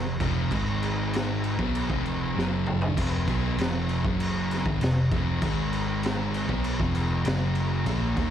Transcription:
Already playing: F1 F2 C3
0.20 F1 F2 C3 F3, kick, crash
0.51 G#1 G#2 D#3 G#3, kick, crash
0.82 crash
1.13 snare, crash
1.44 crash
1.59 B1 B2 F#3 B3, kick
1.75 crash
1.90 F1 F2 C3 F3, kick
2.05 crash
2.35 F#1 F#2 C#3 F#3, snare
2.66 mid tom
2.81 floor tom
2.97 F1 F2 C3 F3, kick, crash
3.28 B1 B2 F#3 B3, kick, crash
3.58 F1 F2 C3 F3, snare, crash
3.89 crash
4.05 F#1 F#2 C#3 F#3, kick
4.20 crash
4.51 snare, crash
4.65 G#1 G#2 D#3, kick
4.81 F1 F2 C3, snare, crash
5.11 F1 F2 C3 F3, kick, crash
5.42 G#1 G#2 D#3 G#3, kick, crash
5.73 crash
6.03 snare, crash
6.34 crash
6.49 B1 B2 F#3 B3, kick
6.64 crash
6.80 F1 F2 C3 F3, kick
6.95 crash
7.25 F#1 F#2 C#3 F#3, snare, crash
7.55 crash
7.86 A#1 A#2 F3 A#3, kick, crash
8.17 D#2 D#3 A#3 D#4, kick, crash

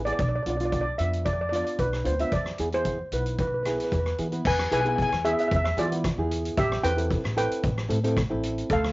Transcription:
Already playing: A1
0.05 B3 E4 G#4 D5, closed hi-hat
0.13 D5
0.19 B1 D5, kick, closed hi-hat
0.29 D5
0.36 D5
0.43 B1 B3 D4 D5, closed hi-hat
0.47 F4 D5
0.57 B3 D4 F4 D5, closed hi-hat
0.65 D5
0.72 D5, kick, closed hi-hat
0.81 D5
0.98 F2 B3 D4 F4 E5, closed hi-hat
1.13 closed hi-hat
1.25 D5, kick, closed hi-hat
1.33 D5
1.41 D5
1.49 B3 D4 F4 D5, closed hi-hat
1.56 D5
1.64 D5, closed hi-hat
1.79 B1 B4, kick, closed hi-hat
1.93 cross-stick
2.04 D2 B3 D4 F4 C5, closed hi-hat
2.19 B3 D4 F4 E5, closed hi-hat
2.32 E2 D5, kick, closed hi-hat
2.46 cross-stick
2.58 E2 B3 E4 G#4, closed hi-hat
2.72 B3 E4 G#4 C5, closed hi-hat
2.85 kick, closed hi-hat
3.12 B1 B3 E4 B4, closed hi-hat
3.26 closed hi-hat
3.39 B4, kick, closed hi-hat
3.48 B4
3.54 B4
3.63 B3 E4 G#4 B4, cross-stick, closed hi-hat
3.69 B4
3.77 B4, closed hi-hat
3.85 B4
3.92 E2 B4, kick, closed hi-hat
3.99 B4
4.06 B4, cross-stick
4.18 E3 B3 E4 G#4, closed hi-hat
4.32 B3 E4 B4, closed hi-hat
4.45 E2 B4 G#5, kick, crash
4.59 cross-stick
4.71 B1 B3 E4 G#4 B4 G#5, closed hi-hat
4.81 G#5
4.85 B3 E4 G#4 G#5, closed hi-hat
4.96 G#5, kick, closed hi-hat
5.02 G#5
5.09 E2 G#5, cross-stick
5.24 B3 E4 G#4 E5, closed hi-hat
5.33 E5
5.38 E5, closed hi-hat
5.48 E2 E5, kick, closed hi-hat
5.56 E5
5.64 E5, cross-stick
5.77 E3 B3 E4 F4 G#4 D5, closed hi-hat
5.91 B3 E4 B4, closed hi-hat
6.04 kick, cross-stick, closed hi-hat
6.18 E2 B3 E4 G#4
6.31 closed hi-hat
6.45 closed hi-hat
6.58 A1 G4 E5, kick, closed hi-hat
6.72 cross-stick
6.83 E2 C4 E4 A4 B4 G5, closed hi-hat
6.97 C4 E4 A4, closed hi-hat
7.11 kick, closed hi-hat
7.24 A1, cross-stick
7.36 C4 E4 A4 B4 G5, closed hi-hat
7.52 closed hi-hat
7.64 A1, kick, closed hi-hat
7.78 cross-stick
7.89 A2 C4 E4 A4, closed hi-hat
8.04 C4 E4 A4, closed hi-hat
8.17 kick, cross-stick, closed hi-hat
8.30 A1 C4 E4 A4
8.43 closed hi-hat
8.58 closed hi-hat
8.70 D2 A4 F5, kick, closed hi-hat
8.84 cross-stick

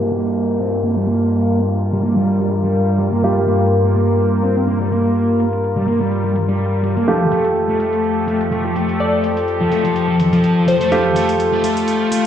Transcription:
Already playing: G2 G3 A#3 F4 G4 A#4
0.01 A#3
0.12 A#3
0.60 C4
0.84 A#3
0.97 G3
1.08 A#3, closed hi-hat
1.56 closed hi-hat
1.80 closed hi-hat
1.93 G3
2.04 A#3, closed hi-hat
2.17 G3, closed hi-hat
2.41 G3
2.52 closed hi-hat
2.64 G3
2.99 G3, closed hi-hat
3.13 A#3, closed hi-hat
3.24 G3 A#3 F4 G4
3.48 A#3, closed hi-hat
3.61 closed hi-hat
3.72 closed hi-hat
3.85 A#3
3.96 A#3, closed hi-hat
4.09 closed hi-hat
4.20 closed hi-hat
4.44 C4, closed hi-hat
4.57 closed hi-hat
4.68 A#3, closed hi-hat
4.81 G3
4.92 A#3, closed hi-hat
5.05 closed hi-hat
5.16 closed hi-hat
5.40 closed hi-hat
5.53 closed hi-hat
5.64 closed hi-hat
5.77 G3
5.88 A#3, closed hi-hat
6.01 G3, closed hi-hat
6.12 closed hi-hat
6.25 G3
6.36 closed hi-hat
6.49 G3, closed hi-hat
6.60 closed hi-hat
6.84 G3, closed hi-hat
6.97 A#3, closed hi-hat
7.08 F2 F3 A3 F4 G4 A4, closed hi-hat
7.32 A3, closed hi-hat
7.45 closed hi-hat
7.56 closed hi-hat
7.69 A3
7.80 A3, closed hi-hat
7.93 closed hi-hat
8.04 closed hi-hat
8.28 A3, closed hi-hat
8.41 closed hi-hat
8.52 A3, closed hi-hat
8.65 F3
8.76 A3, closed hi-hat
8.89 closed hi-hat
9.00 D5, closed hi-hat
9.24 closed hi-hat
9.37 closed hi-hat
9.48 closed hi-hat
9.61 F3
9.72 A3, closed hi-hat
9.84 F3, closed hi-hat
9.96 closed hi-hat
10.08 F3
10.20 closed hi-hat
10.33 F3, closed hi-hat
10.44 closed hi-hat
10.68 F3 C5, closed hi-hat
10.80 A3 C5, closed hi-hat
10.91 F3 A3 F4 G4, closed hi-hat
11.15 A3, closed hi-hat
11.29 closed hi-hat
11.40 closed hi-hat
11.53 A3
11.64 A3, closed hi-hat
11.77 closed hi-hat
11.88 closed hi-hat
12.12 A3, closed hi-hat

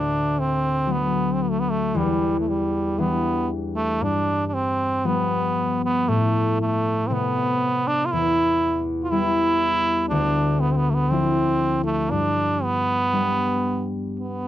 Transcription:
Already playing: D2 D4
0.39 C4
0.87 F#3 A3 D4
0.92 B3
1.34 C4
1.42 B3
1.50 A3
1.60 B3
1.70 A3
1.95 E2 G3
2.40 A3
2.49 G3
2.98 E3 G3 B3 D4
3.76 A3
4.01 G2 D4
4.47 D4
4.54 C4
5.04 F3 G3 B3
5.84 B3
6.08 A2 A3
6.61 A3
7.07 C3 A3 B3 C4
7.13 B3
7.87 D4
8.05 F4
8.12 E2 E4
9.04 F4
9.11 G3 B3 E4
10.09 D2 D4
10.60 B3
10.72 C4
10.77 B3
10.90 A3
10.94 B3
11.10 F3 C4 D4 E4
11.85 A3
12.11 G2 D4
12.63 B3
13.12 G3 B3 D4
14.20 B3

